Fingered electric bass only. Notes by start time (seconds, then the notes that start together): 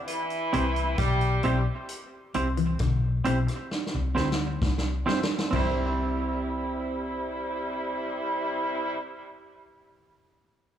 0.54 C2
0.99 B1
1.45 B1
2.35 C2
2.80 B1
3.26 B1
3.94 C2
4.16 D2
4.62 C2
5.53 C2